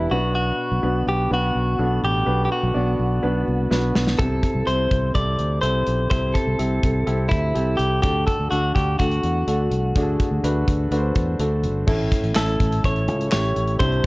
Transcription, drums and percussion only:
3.71 snare soft
3.95 snare medium
4.07 snare medium
4.19 kick medium
4.19 closed hi-hat medium
4.43 kick medium
4.43 closed hi-hat medium
4.67 closed hi-hat medium
4.91 kick medium
4.91 closed hi-hat medium
5.15 kick medium
5.15 closed hi-hat medium
5.39 closed hi-hat medium
5.63 closed hi-hat medium
5.87 closed hi-hat medium
6.11 kick loud
6.11 closed hi-hat medium
6.35 kick medium
6.35 closed hi-hat medium
6.59 closed hi-hat medium
6.83 kick medium
6.83 closed hi-hat medium
7.07 closed hi-hat medium
7.31 kick medium
7.31 closed hi-hat medium
7.56 closed hi-hat medium
7.79 closed hi-hat medium
8.03 kick loud
8.03 closed hi-hat medium
8.28 kick medium
8.28 closed hi-hat medium
8.52 closed hi-hat medium
8.76 kick medium
8.76 closed hi-hat medium
8.99 kick medium
8.99 closed hi-hat medium
9.11 closed hi-hat soft
9.23 closed hi-hat medium
9.48 closed hi-hat medium
9.71 closed hi-hat medium
9.95 kick loud
9.95 closed hi-hat medium
10.20 kick medium
10.20 closed hi-hat medium
10.44 closed hi-hat medium
10.68 kick medium
10.68 closed hi-hat medium
10.92 closed hi-hat medium
11.15 kick medium
11.15 closed hi-hat medium
11.40 closed hi-hat medium
11.64 closed hi-hat medium
11.88 kick loud
11.88 crash medium
12.12 kick medium
12.12 closed hi-hat medium
12.24 closed hi-hat soft
12.35 snare medium
12.35 clap medium
12.48 closed hi-hat soft
12.60 kick medium
12.60 closed hi-hat medium
12.72 closed hi-hat medium
12.84 kick medium
12.84 closed hi-hat medium
12.96 closed hi-hat soft
13.08 closed hi-hat medium
13.21 closed hi-hat medium
13.32 snare medium
13.32 clap medium
13.56 closed hi-hat medium
13.68 closed hi-hat soft
13.80 kick loud
13.80 closed hi-hat medium
13.92 closed hi-hat soft

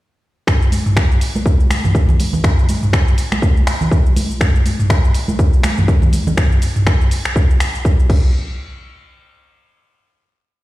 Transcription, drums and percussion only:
0.47 finger snap medium
0.47 kick loud
0.47 mid tom medium
0.47 shaker medium
0.62 shaker soft
0.72 open hi-hat medium
0.72 high conga medium
0.72 shaker medium
0.86 mid tom medium
0.86 shaker soft
0.97 finger snap loud
0.97 kick loud
0.97 shaker medium
1.11 shaker soft
1.21 open hi-hat medium
1.21 shaker medium
1.36 high conga medium
1.36 shaker soft
1.46 kick loud
1.46 shaker medium
1.60 shaker soft
1.70 finger snap loud
1.70 open hi-hat medium
1.70 high conga medium
1.70 shaker loud
1.84 mid tom medium
1.84 low conga medium
1.84 shaker soft
1.95 kick loud
1.95 shaker medium
2.09 low conga loud
2.09 shaker soft
2.20 open hi-hat loud
2.20 high conga medium
2.20 shaker loud
2.33 low conga loud
2.33 shaker soft
2.44 finger snap medium
2.44 kick loud
2.44 mid tom medium
2.44 shaker medium
2.59 shaker soft
2.69 open hi-hat medium
2.69 high conga medium
2.69 shaker loud
2.83 mid tom medium
2.83 shaker soft
2.93 finger snap loud
2.93 kick loud
2.93 shaker medium
3.08 shaker soft
3.18 open hi-hat medium
3.18 shaker loud
3.32 finger snap medium
3.32 high conga medium
3.32 shaker soft
3.42 kick loud
3.42 high conga medium
3.42 shaker medium
3.57 shaker soft
3.67 finger snap loud
3.67 open hi-hat medium
3.67 shaker loud
3.81 low conga medium
3.81 shaker soft
3.91 kick loud
3.91 shaker medium
4.06 shaker soft
4.16 open hi-hat medium
4.16 high conga medium
4.16 shaker loud
4.31 shaker soft
4.41 finger snap medium
4.41 kick loud
4.41 mid tom medium
4.41 shaker medium
4.55 shaker soft
4.66 open hi-hat medium
4.66 high conga medium
4.66 shaker loud
4.80 mid tom medium
4.80 shaker soft
4.90 finger snap loud
4.90 kick loud
4.90 shaker medium
5.04 shaker soft
5.14 open hi-hat medium
5.14 shaker medium
5.28 high conga medium
5.28 shaker soft
5.39 kick loud
5.39 shaker medium
5.53 shaker soft
5.63 finger snap medium
5.63 open hi-hat medium
5.63 high conga loud
5.63 shaker loud
5.78 mid tom medium
5.78 low conga medium
5.78 shaker soft
5.88 kick loud
5.88 shaker medium
6.02 low conga loud
6.02 shaker soft
6.13 open hi-hat medium
6.13 high conga medium
6.13 shaker loud
6.27 low conga loud
6.27 shaker soft
6.37 finger snap medium
6.37 kick loud
6.37 mid tom medium
6.37 shaker medium
6.52 shaker soft
6.62 open hi-hat medium
6.62 shaker loud
6.76 mid tom medium
6.76 shaker soft
6.87 finger snap medium
6.87 kick loud
6.87 shaker medium
7.01 shaker soft
7.11 open hi-hat medium
7.11 shaker medium
7.25 finger snap medium
7.25 shaker soft
7.36 kick loud
7.36 shaker medium
7.50 shaker soft
7.60 finger snap medium
7.60 open hi-hat medium
7.60 shaker loud
7.75 shaker soft
7.85 kick loud
7.85 shaker medium
8.00 shaker soft
8.10 kick loud
8.10 crash medium

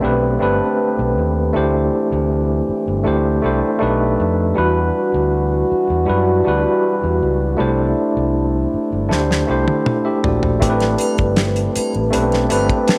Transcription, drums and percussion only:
9.11 snare soft
9.31 snare medium
9.68 high tom medium
9.86 mid tom medium
10.24 floor tom medium
10.43 floor tom medium
10.62 kick loud
10.62 closed hi-hat medium
10.62 muted triangle soft
10.80 snare soft
10.80 muted triangle medium
10.98 closed hi-hat medium
10.98 triangle medium
11.18 kick medium
11.18 muted triangle soft
11.36 snare loud
11.36 closed hi-hat medium
11.36 muted triangle soft
11.56 closed hi-hat soft
11.56 muted triangle soft
11.75 closed hi-hat medium
11.75 triangle medium
11.95 muted triangle soft
12.13 closed hi-hat medium
12.13 muted triangle medium
12.32 snare soft
12.32 muted triangle soft
12.50 closed hi-hat medium
12.50 triangle medium
12.70 kick medium
12.70 muted triangle medium
12.88 snare loud
12.88 closed hi-hat medium
12.88 muted triangle soft

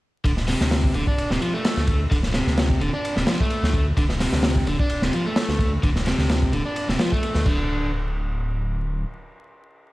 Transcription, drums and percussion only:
0.24 kick loud
0.24 ride medium
0.37 snare soft
0.48 snare soft
0.48 open hi-hat medium
0.61 snare medium
0.71 snare loud
0.71 ride medium
0.84 kick medium
0.94 ride medium
1.07 kick medium
1.18 ride medium
1.31 snare soft
1.42 ride medium
1.64 snare loud
1.64 ride medium
1.77 snare soft
1.87 kick medium
1.87 ride medium
2.11 kick loud
2.11 ride loud
2.23 snare soft
2.34 snare medium
2.34 ride medium
2.47 snare soft
2.58 snare loud
2.58 ride medium
2.70 kick medium
2.81 ride medium
3.05 ride medium
3.17 snare soft
3.27 snare loud
3.27 ride medium
3.40 kick medium
3.50 ride medium
3.64 snare medium
3.73 kick medium
3.73 ride medium
3.97 kick loud
3.97 ride medium
4.09 snare soft
4.20 snare soft
4.20 open hi-hat medium
4.33 snare soft
4.43 snare loud
4.43 ride medium
4.56 kick medium
4.67 ride medium
4.80 kick loud
4.90 ride medium
5.02 snare soft
5.13 ride medium
5.36 snare loud
5.36 ride loud
5.49 snare soft
5.59 kick loud
5.59 ride medium
5.83 kick loud
5.83 ride medium
5.96 snare soft
6.06 snare medium
6.06 ride medium
6.18 snare soft
6.29 snare loud
6.29 ride medium
6.42 kick loud
6.53 ride medium
6.76 ride medium
6.89 snare soft
6.99 snare loud
6.99 ride medium
7.12 kick loud
7.23 ride medium
7.35 snare soft
7.46 kick loud
7.46 crash medium

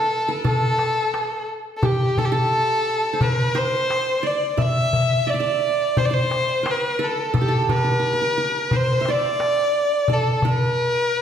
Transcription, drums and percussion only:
0.11 darbuka ka soft
0.45 darbuka dum medium
0.79 darbuka tek soft
1.14 darbuka tek medium
1.31 darbuka ka soft
1.83 darbuka dum medium
2.17 darbuka dum medium
2.35 darbuka ka soft
2.87 darbuka ka soft
3.21 darbuka dum medium
3.55 darbuka tek medium
3.90 darbuka tek medium
4.08 darbuka ka soft
4.58 darbuka dum medium
4.76 darbuka ka soft
4.93 darbuka dum medium
5.62 darbuka ka soft
5.79 darbuka ka soft
5.97 darbuka dum medium
6.31 darbuka tek medium
6.66 darbuka tek medium
6.83 darbuka ka soft
7.34 darbuka dum medium
7.69 darbuka dum medium
8.37 darbuka ka soft
8.71 darbuka dum medium
9.05 darbuka tek medium
9.40 darbuka tek medium
9.57 darbuka ka soft
10.08 darbuka dum medium
10.42 darbuka dum medium
10.60 darbuka ka soft
11.11 darbuka ka soft

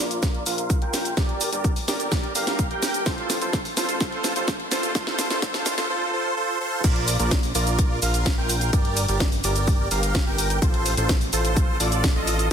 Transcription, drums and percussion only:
0.11 closed hi-hat medium
0.11 cabasa soft
0.23 kick loud
0.23 snare medium
0.23 closed hi-hat medium
0.23 cabasa soft
0.34 closed hi-hat soft
0.46 open hi-hat loud
0.46 cabasa medium
0.58 closed hi-hat medium
0.58 cabasa soft
0.70 kick loud
0.70 closed hi-hat medium
0.70 cabasa soft
0.82 closed hi-hat soft
0.94 snare medium
0.94 open hi-hat loud
0.94 cabasa medium
1.05 closed hi-hat medium
1.05 cabasa soft
1.17 kick loud
1.17 snare medium
1.17 closed hi-hat medium
1.17 cabasa soft
1.29 closed hi-hat soft
1.41 open hi-hat loud
1.41 cabasa medium
1.53 closed hi-hat medium
1.53 cabasa soft
1.64 kick loud
1.64 closed hi-hat soft
1.64 cabasa soft
1.76 open hi-hat medium
1.76 cabasa soft
1.88 snare medium
1.88 open hi-hat loud
1.88 cabasa medium
2.00 closed hi-hat medium
2.00 cabasa soft
2.12 kick loud
2.12 snare medium
2.12 open hi-hat medium
2.12 cabasa soft
2.23 closed hi-hat soft
2.35 open hi-hat loud
2.35 cabasa medium
2.47 snare medium
2.47 closed hi-hat medium
2.47 cabasa soft
2.59 kick loud
2.59 closed hi-hat medium
2.59 cabasa soft
2.71 closed hi-hat soft
2.83 snare medium
2.83 open hi-hat loud
2.83 cabasa medium
2.94 closed hi-hat medium
2.94 cabasa soft
3.06 kick loud
3.06 snare medium
3.06 closed hi-hat soft
3.06 cabasa soft
3.18 closed hi-hat soft
3.30 snare medium
3.30 open hi-hat loud
3.30 cabasa medium
3.42 closed hi-hat soft
3.42 cabasa soft
3.53 kick loud
3.53 snare medium
3.53 closed hi-hat soft
3.53 cabasa soft
3.65 open hi-hat medium
3.65 cabasa soft
3.77 snare medium
3.77 open hi-hat loud
3.77 cabasa medium
3.89 closed hi-hat soft
3.89 cabasa soft
4.01 kick loud
4.01 snare medium
4.01 closed hi-hat medium
4.01 cabasa soft
4.12 closed hi-hat soft
4.24 snare medium
4.24 open hi-hat loud
4.24 cabasa medium
4.36 closed hi-hat medium
4.36 cabasa soft
4.48 kick loud
4.48 snare medium
4.48 closed hi-hat medium
4.48 cabasa soft
4.60 closed hi-hat soft
4.71 snare medium
4.71 open hi-hat loud
4.71 cabasa medium
4.83 closed hi-hat soft
4.83 cabasa soft
4.95 kick loud
4.95 snare medium
4.95 closed hi-hat medium
4.95 cabasa soft
5.07 snare medium
5.07 closed hi-hat soft
5.19 snare loud
5.19 open hi-hat loud
5.19 cabasa medium
5.30 snare medium
5.30 closed hi-hat soft
5.30 cabasa soft
5.42 kick loud
5.42 snare medium
5.42 closed hi-hat soft
5.42 cabasa soft
5.54 snare medium
5.54 open hi-hat medium
5.54 cabasa soft
5.66 snare loud
5.66 open hi-hat loud
5.66 cabasa medium
5.78 snare medium
5.78 closed hi-hat medium
5.78 cabasa soft
6.84 kick loud
6.84 closed hi-hat medium
6.84 crash loud
6.84 cabasa soft
6.96 closed hi-hat soft
7.08 open hi-hat loud
7.08 cabasa medium
7.20 closed hi-hat medium
7.20 cabasa soft
7.31 kick loud
7.31 snare loud
7.31 closed hi-hat medium
7.31 cabasa soft
7.43 open hi-hat medium
7.43 cabasa soft
7.55 open hi-hat loud
7.55 cabasa medium
7.67 closed hi-hat medium
7.67 cabasa soft
7.79 kick loud
7.79 closed hi-hat medium
7.79 cabasa soft
8.02 open hi-hat loud
8.02 cabasa medium
8.14 closed hi-hat medium
8.14 cabasa soft
8.26 kick loud
8.26 snare loud
8.26 closed hi-hat medium
8.26 cabasa soft
8.49 open hi-hat loud
8.49 cabasa medium
8.61 closed hi-hat medium
8.61 cabasa soft
8.73 kick loud
8.73 closed hi-hat medium
8.73 cabasa soft
8.85 closed hi-hat soft
8.97 open hi-hat loud
8.97 cabasa medium
9.09 closed hi-hat medium
9.09 cabasa soft
9.20 kick loud
9.20 snare loud
9.20 closed hi-hat medium
9.20 cabasa soft
9.32 open hi-hat medium
9.32 cabasa soft
9.44 open hi-hat loud
9.44 cabasa medium
9.56 closed hi-hat medium
9.56 cabasa soft
9.67 kick loud
9.67 open hi-hat medium
9.67 cabasa soft
9.91 open hi-hat loud
9.91 cabasa medium
10.03 closed hi-hat medium
10.03 cabasa soft
10.15 kick loud
10.15 snare loud
10.15 closed hi-hat medium
10.15 cabasa soft
10.38 open hi-hat loud
10.38 cabasa medium
10.50 closed hi-hat medium
10.50 cabasa soft
10.62 kick loud
10.62 closed hi-hat medium
10.62 cabasa soft
10.74 closed hi-hat soft
10.86 open hi-hat loud
10.86 cabasa medium
10.97 closed hi-hat medium
10.97 cabasa soft
11.09 kick loud
11.09 snare loud
11.09 closed hi-hat medium
11.09 cabasa soft
11.21 open hi-hat medium
11.21 cabasa soft
11.33 open hi-hat loud
11.33 cabasa medium
11.45 closed hi-hat medium
11.45 cabasa soft
11.57 kick loud
11.57 closed hi-hat medium
11.57 cabasa soft
11.80 open hi-hat loud
11.80 cabasa medium
11.92 closed hi-hat medium
11.92 cabasa soft
12.04 kick loud
12.04 snare loud
12.04 closed hi-hat medium
12.04 cabasa soft
12.27 open hi-hat loud
12.27 cabasa medium
12.39 closed hi-hat soft
12.39 cabasa soft

